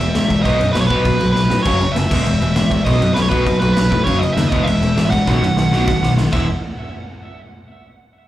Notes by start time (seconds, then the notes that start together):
Already playing: E5
0.00 E1 E2 B2 E3 G#3, crash
0.15 C#2 E2 B2 E3 G#3, snare, crash
0.29 E2 B2 E3 G#3, kick, crash
0.43 B1 B2 F#3 B3 D#5, kick, crash
0.59 F#2 B2 F#3, crash
0.73 B1 B2 F#3 B4, snare, crash
0.81 C#5
0.87 B2 F#3 B3 B4, kick, crash
0.91 B1
1.05 B2 F#3, kick, crash
1.20 B1 B2 F#3, crash
1.33 B1 B2 F#3 B4, snare
1.50 A2 B2 F#3, snare
1.63 F#1 F#2 C#3 F#3 C#5, kick, crash
1.81 F#2 C#3, crash
1.93 F#1 F#2 C#3 E5, snare, crash
2.11 E1 E2 B2 E3 G#3 B3, kick, crash
2.23 E1 E2 E3 G#3 E5, crash
2.27 B2
2.42 E1 E2 B2 E3 G#3, crash
2.56 A1 E2 B2 E3 G#3, snare, crash
2.71 E2 B2 E3 G#3, kick, crash
2.85 B1 B2 F#3 B3 D#5, kick, crash
3.02 F#2 B2 F#3, crash
3.14 B1 B2 F#3 B4, snare, crash
3.22 C#5
3.29 B1 B2 F#3 B3 B4, kick, crash
3.47 B2 F#3, kick, crash
3.60 B1 B2 F#3 B4, crash
3.73 B1 B2 F#3 B4, snare, crash
3.91 A2 B2 F#3, kick, crash
4.04 F#1 F#2 C#3 F#3 C#5, kick, crash
4.19 F#2 C#3 D#5
4.23 crash
4.33 D#2 F#2 C#3 E5
4.38 snare, crash
4.49 E1 E2 B2 E3 G#3 D#5, kick, crash
4.53 B3
4.64 E1 E2 E3 E5, crash
4.68 B2 G#3
4.81 E1 E2 B2 E3 G#3, crash
4.97 A1 E2 B2 E3 G#3, snare, crash
5.05 E5
5.11 E2 B2 E3 G#3 F#5, kick, crash
5.28 B1 B2 D#3 F#3 B3, kick, snare
5.42 F#2 B2 D#3 F#3, snare
5.56 B1 B2 D#3 F#3, snare
5.71 B1 B2 D#3 F#3 B3, snare
5.88 B2 D#3 F#3, kick, snare
6.02 B1 B2 D#3 F#3, snare
6.17 B1 B2 D#3 F#3, snare
6.32 E1 E2 B2 E3 G#3 B3 E4 E5, kick, crash